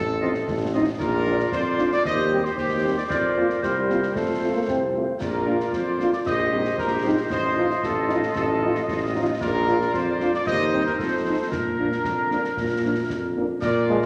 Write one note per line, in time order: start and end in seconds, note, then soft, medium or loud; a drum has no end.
0.00 0.39 A1 medium
0.00 0.70 A4 medium
0.21 0.31 F3 medium
0.21 0.31 C4 medium
0.21 0.31 D#4 medium
0.21 0.30 F4 medium
0.21 0.31 D#5 medium
0.34 snare soft
0.48 0.91 A1 medium
0.48 concert bass drum medium
0.48 snare medium
0.73 0.83 F3 medium
0.73 0.83 C4 medium
0.73 0.83 D#4 medium
0.73 0.83 F4 medium
0.73 0.83 D#5 medium
0.99 1.44 A#1 medium
0.99 2.01 F4 medium
0.99 1.49 A#4 medium
0.99 2.01 D5 medium
0.99 concert bass drum medium
0.99 snare medium
0.99 crash soft
1.26 1.36 F3 medium
1.26 1.36 D4 medium
1.39 snare soft
1.52 1.96 F2 medium
1.52 1.89 C5 medium
1.52 concert bass drum medium
1.52 snare medium
1.78 1.88 F3 medium
1.78 1.88 D4 medium
1.78 snare medium
1.92 2.05 D5 medium
1.92 snare soft
2.04 2.49 D#2 medium
2.04 2.55 G4 medium
2.04 2.55 C5 medium
2.04 2.42 D#5 medium
2.04 concert bass drum medium
2.04 snare medium
2.31 2.41 G3 medium
2.31 2.41 C4 medium
2.31 2.41 G4 medium
2.45 2.58 C5 medium
2.45 snare soft
2.56 3.01 D#2 medium
2.56 3.06 G4 soft
2.56 2.95 G4 medium
2.56 3.06 C5 medium
2.56 concert bass drum medium
2.56 snare medium
2.84 2.94 G3 soft
2.84 2.93 C4 soft
2.84 2.93 G4 soft
2.98 3.04 D5 medium
3.09 3.54 F2 medium
3.09 3.61 A#4 medium
3.09 3.58 C5 soft
3.09 3.59 D5 medium
3.09 concert bass drum medium
3.09 snare medium
3.37 3.46 A#3 soft
3.37 3.46 C4 soft
3.37 3.46 F4 soft
3.50 snare soft
3.61 4.07 C2 medium
3.61 4.17 G3 medium
3.61 4.11 A#4 soft
3.61 4.11 C5 soft
3.61 4.68 C5 medium
3.61 concert bass drum medium
3.61 snare medium
3.89 3.98 A#3 soft
3.89 3.99 C4 soft
3.89 3.99 F4 soft
3.89 snare soft
4.03 snare soft
4.14 4.59 F2 soft
4.14 4.55 A3 soft
4.14 4.93 A4 soft
4.14 4.89 C5 soft
4.14 concert bass drum medium
4.14 snare medium
4.41 4.51 A3 soft
4.41 4.51 C4 soft
4.41 4.51 F4 soft
4.55 4.61 A#3 soft
4.68 5.07 C2 medium
4.68 5.17 C4 medium
4.68 concert bass drum medium
4.68 snare medium
4.94 5.04 A3 soft
4.94 5.04 C4 soft
4.94 5.04 F4 soft
5.20 5.64 A#1 medium
5.20 6.22 F4 soft
5.20 5.69 A#4 medium
5.20 6.21 D5 medium
5.20 concert bass drum medium
5.20 snare medium
5.20 crash soft
5.46 5.56 A#3 soft
5.46 5.56 D4 soft
5.46 5.56 F4 soft
5.60 snare medium
5.73 6.17 F2 medium
5.73 6.13 C5 medium
5.73 concert bass drum medium
5.73 snare medium
5.99 6.09 A#3 soft
5.99 6.09 D4 soft
5.99 6.09 F4 soft
5.99 snare soft
6.13 6.20 D5 medium
6.13 snare medium
6.26 6.69 A#1 medium
6.26 7.31 G4 soft
6.26 7.32 C5 medium
6.26 6.75 D#5 medium
6.26 concert bass drum medium
6.26 snare medium
6.52 6.61 G3 soft
6.52 6.61 C4 soft
6.52 6.61 D#4 soft
6.65 snare medium
6.78 7.22 A#1 medium
6.78 7.27 A#4 medium
6.78 concert bass drum medium
6.78 snare medium
7.04 7.14 G3 soft
7.04 7.14 C4 soft
7.04 7.13 D#4 soft
7.30 7.75 A1 medium
7.30 9.37 F4 medium
7.30 7.80 C5 medium
7.30 9.37 D#5 medium
7.30 concert bass drum medium
7.30 snare medium
7.57 7.66 F3 medium
7.57 7.66 D#4 medium
7.57 7.66 F4 medium
7.70 snare soft
7.83 8.27 A1 medium
7.83 8.33 A4 medium
7.83 concert bass drum medium
7.83 snare medium
8.09 8.19 F3 medium
8.09 8.19 D#4 medium
8.09 8.19 F4 soft
8.09 snare soft
8.23 snare medium
8.35 8.80 A1 medium
8.35 9.11 A4 medium
8.35 concert bass drum medium
8.35 snare medium
8.62 8.72 F3 medium
8.62 8.72 D#4 medium
8.62 8.72 F4 medium
8.75 snare medium
8.88 9.33 A1 medium
8.88 concert bass drum medium
8.88 snare medium
9.15 9.24 F3 medium
9.15 9.24 D#4 medium
9.15 9.24 F4 medium
9.41 9.85 A#1 medium
9.41 10.43 F4 medium
9.41 9.90 A#4 medium
9.41 10.43 D5 medium
9.41 concert bass drum medium
9.41 snare medium
9.41 crash soft
9.67 9.77 F3 medium
9.67 9.77 D4 medium
9.67 9.76 F4 medium
9.81 snare soft
9.94 10.38 F2 medium
9.94 10.34 C5 medium
9.94 concert bass drum medium
9.94 snare medium
10.20 10.30 F3 medium
10.20 10.30 D4 medium
10.20 10.30 F4 medium
10.20 snare soft
10.34 10.46 D5 medium
10.34 snare medium
10.46 10.90 D#2 medium
10.46 11.52 D#4 medium
10.46 11.52 C5 medium
10.46 10.83 D#5 medium
10.46 concert bass drum medium
10.46 snare medium
10.73 10.83 G3 medium
10.73 10.83 C4 medium
10.73 10.82 D#4 soft
10.86 10.98 A#4 medium
10.86 snare soft
10.99 11.39 F2 medium
10.99 11.52 A4 medium
10.99 concert bass drum medium
10.99 snare medium
11.26 11.35 F3 soft
11.26 11.35 C4 soft
11.26 11.35 D#4 soft
11.51 11.96 A#2 medium
11.51 13.36 D4 soft
11.51 13.32 A#4 medium
11.51 13.32 A#4 soft
11.51 concert bass drum medium
11.51 snare medium
11.78 11.88 F3 soft
11.78 11.88 A#3 soft
11.78 11.88 D4 soft
11.92 snare soft
12.04 12.49 F2 soft
12.04 concert bass drum medium
12.04 snare medium
12.31 12.40 F3 soft
12.31 12.40 A#3 soft
12.31 12.40 D4 soft
12.31 snare soft
12.44 snare soft
12.57 13.01 A#2 medium
12.57 concert bass drum medium
12.57 snare medium
12.83 12.93 F3 soft
12.83 12.93 A#3 soft
12.83 12.93 D4 soft
13.10 13.54 F2 medium
13.10 concert bass drum medium
13.10 snare medium
13.36 13.46 F3 soft
13.36 13.46 A#3 soft
13.36 13.46 D4 soft
13.61 14.06 A#2 medium
13.61 14.06 F4 medium
13.61 14.06 A#4 medium
13.61 13.99 D5 medium
13.61 concert bass drum medium
13.61 snare medium
13.61 crash medium
13.88 13.98 F3 medium
13.88 13.98 G#3 medium
13.88 13.98 A#3 medium
13.88 13.98 F4 medium
14.02 snare medium